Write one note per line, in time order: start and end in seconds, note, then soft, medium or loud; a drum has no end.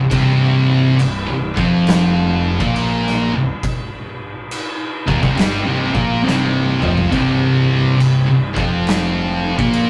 0.00 0.11 C1 medium
0.00 0.10 C2 medium
0.11 0.96 C1 loud
0.11 0.99 C2 loud
0.11 0.99 C3 loud
0.11 kick loud
0.11 crash medium
0.99 1.27 C1 medium
0.99 1.28 C2 medium
0.99 crash medium
1.29 1.56 C1 medium
1.29 1.57 C2 medium
1.57 2.56 F1 medium
1.57 2.60 F2 medium
1.57 2.60 F3 loud
1.57 kick loud
1.87 snare loud
1.87 crash medium
2.60 3.29 A#1 loud
2.60 3.31 A#2 medium
2.60 3.32 A#3 loud
2.60 kick loud
2.76 crash medium
3.07 snare soft
3.33 3.47 C1 medium
3.33 3.49 C2 medium
3.63 kick loud
3.63 crash medium
4.51 crash medium
5.08 5.22 D#1 loud
5.08 5.22 D#2 medium
5.08 5.22 D#3 loud
5.08 kick loud
5.22 5.37 C1 loud
5.22 5.37 C2 medium
5.22 5.37 C3 loud
5.22 kick loud
5.37 5.65 G1 medium
5.37 5.65 G2 medium
5.37 5.65 G3 loud
5.37 snare loud
5.37 crash medium
5.67 5.94 C1 medium
5.67 5.94 C2 medium
5.67 5.94 C3 medium
5.95 6.23 A#1 medium
5.95 6.25 A#2 medium
5.95 6.25 A#3 loud
5.95 kick loud
6.25 6.79 C1 medium
6.25 6.81 C2 medium
6.25 6.81 C3 loud
6.25 snare medium
6.82 7.11 F1 medium
6.82 7.11 F2 medium
6.82 7.12 F3 medium
6.82 mid tom medium
6.97 floor tom medium
7.12 7.96 C1 loud
7.12 7.99 C2 loud
7.12 7.99 C3 loud
7.12 kick loud
7.12 crash medium
8.00 8.26 C1 medium
8.00 8.29 C2 medium
8.00 crash medium
8.28 8.55 C1 medium
8.28 8.58 C2 medium
8.56 9.55 F1 loud
8.56 9.59 F2 loud
8.56 9.59 F3 loud
8.56 kick loud
8.87 snare loud
8.87 crash medium
9.59 9.90 A#1 medium
9.59 9.90 A#2 medium
9.59 9.90 A#3 loud
9.59 kick loud
9.73 crash medium